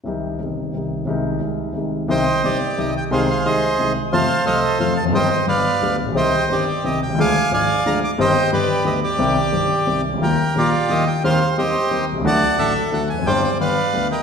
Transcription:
<<
  \new Staff \with { instrumentName = "Bandoneon" } { \time 3/4 \key c \minor \tempo 4 = 178 << { r2. | r2. | g''4 d''4 ees''8 g''8 | f''8 f''8 ees''4. r8 |
a''4 ees''4 f''8 a''8 | g''8 g''8 f''4. r8 | g''4 d''4 ees''8 g''8 | d'''4 aes''4 bes''8 d'''8 |
g''4 d''4 ees''8 d''8~ | d''2~ d''8 r8 | g''4 d''4 ees''8 g''8 | f''8 f''8 ees''4. r8 |
a''4 e''4 fis''8 aes''8 | g''8 g''8 f''4. g''8 | } \\ { r2. | r2. | <c'' ees''>4 g'4. r8 | <aes' c''>4 <aes' c''>4. r8 |
<c'' f''>4 <a' c''>4. r8 | <c'' ees''>4 <b' d''>4. r8 | <c'' ees''>4 g'4. r8 | <f'' aes''>4 <d'' f''>4. r8 |
<c'' ees''>4 <g' b'>4. g'8~ | g'2~ g'8 r8 | bes'4 <f' g'>4. r8 | c''4 <g' c''>4. r8 |
<d'' fis''>4 a'4. r8 | <c'' d''>4 <b' d''>4. <bes' ees''>8 | } >> }
  \new Staff \with { instrumentName = "Grand piano" } { \clef bass \time 3/4 \key c \minor <c, c ees g ees'>4 <g,, g, c ees g ees'>4 <c, c ees g ees'>4 | <c, c ees aes ees'>4 <c, c ees aes ees'>4 <c, c ees aes ees'>4 | <c, c ees g ees'>8 r8 <g,, g, c ees g ees'>8 r8 <c, c ees g ees'>8 r8 | <c, c ees aes ees'>8 r8 <c, c ees aes ees'>8 r8 <c, c ees aes ees'>8 r8 |
<f, c f a f'>8 r8 <c, c f a f'>8 r8 <f, c f a f'>8 r32 e,32 f,32 fis,32 | <g,, g, ees g c' g'>8 r8 <g,, g, d g b g'>8 r8 <d, d g b g'>8 r32 a,,32 bes,,32 b,,32 | <c, c ees g c' g'>8 r8 <g,, g, ees g c' g'>8 r8 <c, c ees g c' g'>8 r32 b,,32 c,32 des,32 | <d, d f aes d' aes'>8 r8 <aes,, aes, f aes d' aes'>8 r8 <d, d f aes d' aes'>8 r8 |
<g,, g, ees g c' g'>8 r8 <g,, g, d g b g'>8 r8 <d, d g b g'>8 r8 | <c, c ees g c' g'>8 r8 <g,, g, ees g c' g'>8 r8 <c, c ees g c' g'>8 r32 c,32 des,32 d,32 | <ees, ees g bes f'>8 r8 <bes,, bes, ees g bes f'>8 r8 <ees, ees g bes f'>8 r8 | <ees, ees g c' g'>8 r8 <ees, ees g c' g'>8 r8 <ees, ees g c' g'>8 r32 b,,32 c,32 des,32 |
<d, d fis a fis'>8 r8 <a,, a, d fis a fis'>8 r8 <d, d fis a fis'>8 r32 e,32 f,32 fis,32 | <g,, g, d g c' g'>8 r8 <g,, g, d g b g'>8 r8 <d, d g b g'>8 r8 | }
>>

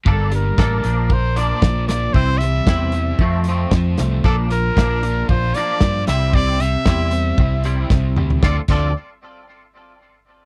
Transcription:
<<
  \new Staff \with { instrumentName = "Trumpet" } { \time 4/4 \key d \minor \tempo 4 = 115 a'8 bes'4. c''8 d''4 d''8 | c''8 e''2 r4. | a'8 bes'4. c''8 d''4 e''8 | d''8 e''2 r4. |
d''8 d''8 r2. | }
  \new Staff \with { instrumentName = "Clean electric guitar" } { \time 4/4 \key d \minor <bes d' a'>8 <bes d'>8 <bes d' a'>8 <f bes d'>8 <f bes>8 <f bes d'>8 <f bes>8 <f bes>8 | <e c' e'>8 <e c'>8 <e c' e'>8 <e c'>8 <f a c'>8 <f a c'>8 <f a>8 <f a>8 | <f bes d'>8 <f bes>8 <f bes d'>8 <f bes>8 <f bes>8 <f bes d'>8 <f bes>8 <g c' e'>8 | <g c' e'>8 <g c'>8 <g c' e'>8 <g c'>8 <g c'>8 <g c' e'>8 <g c'>8 <g c'>8 |
<c' f' a'>8 <c' f' a'>8 r2. | }
  \new Staff \with { instrumentName = "Overdriven electric guitar" } { \clef bass \time 4/4 \key d \minor g,8 g8 bes8 bes,8 bes'8 d'8 f8 bes8 | c8 g8 c'8 e'8 f,8 c'8 f8 a8 | bes,8 f8 bes8 d'8 f'8 d'8 f8 c8 | c8 c8 g8 c'8 e'8 c'8 c8 g8 |
<d f a d'>8 <d f a d'>8 r2. | }
  \new Staff \with { instrumentName = "Fingered electric bass" } { \clef bass \time 4/4 \key d \minor g,,4 a,,8 bes,,4. bes,,4 | c,4 e,4 f,4 f,8 c,8 | bes,,4 bes,,4 bes,,8 r8 g,8 c,8~ | c,4 e,4 c,4 c,8 d,8 |
d,8 d,8 r2. | }
  \new DrumStaff \with { instrumentName = "Drums" } \drummode { \time 4/4 bd8 hh8 <bd sn>8 hh8 bd8 hh8 <bd sn>8 <hh sn>8 | bd8 hh8 <bd sn>8 hh8 bd8 hh8 <bd sn>8 <hh sn>8 | bd8 hh8 <bd sn>8 hh8 bd8 hh8 <bd sn>8 <hh sn>8 | bd8 hh8 <bd sn>8 hh8 bd8 hh8 <bd sn>8 toml16 tomfh16 |
<bd sn>8 <cymc bd>8 r4 r4 r4 | }
>>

